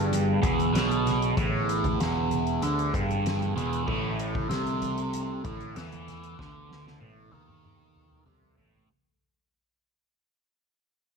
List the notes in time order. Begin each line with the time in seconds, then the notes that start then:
Already playing: G1 G2 B3 G#4
0.12 closed hi-hat, high conga
0.42 E1 E2, kick, closed hi-hat
0.59 closed hi-hat, high conga
0.73 B1 B2, snare, closed hi-hat
0.90 closed hi-hat, high conga
1.06 snare, closed hi-hat, low conga
1.22 closed hi-hat
1.37 A1 A2, kick, closed hi-hat
1.69 closed hi-hat
1.84 kick, closed hi-hat, low conga
1.99 E1 E2, snare, closed hi-hat
2.31 closed hi-hat, high conga, low conga
2.47 closed hi-hat
2.62 D2 D3, closed hi-hat, high conga
2.79 closed hi-hat
2.94 G1 G2, kick, closed hi-hat
3.09 closed hi-hat, high conga
3.26 snare, closed hi-hat
3.41 closed hi-hat, high conga
3.56 E1 E2, closed hi-hat, low conga
3.73 closed hi-hat
3.86 A1 A2 A3 A4, kick, crash
4.19 closed hi-hat
4.35 kick, low conga
4.49 C2 C3, snare, closed hi-hat
4.67 closed hi-hat
4.82 closed hi-hat, high conga, low conga
4.98 closed hi-hat
5.13 closed hi-hat, high conga
5.44 A1 A2, kick, closed hi-hat
5.60 closed hi-hat, high conga
5.76 E2 E3, snare, closed hi-hat
5.92 closed hi-hat, high conga
6.08 snare, closed hi-hat, low conga
6.23 closed hi-hat
6.39 D2 D3 B3, kick, snare
6.70 snare, high conga
6.86 snare, low conga
7.00 A1 A2, high tom
7.31 D#2 D#3, high tom, high conga, low conga
7.49 mid tom
7.64 mid tom, high conga
7.96 mid tom
8.11 mid tom, high conga
8.25 C2 C3, mid tom, high conga
8.43 high conga
8.57 A1 A2, floor tom, low conga
8.73 floor tom, low conga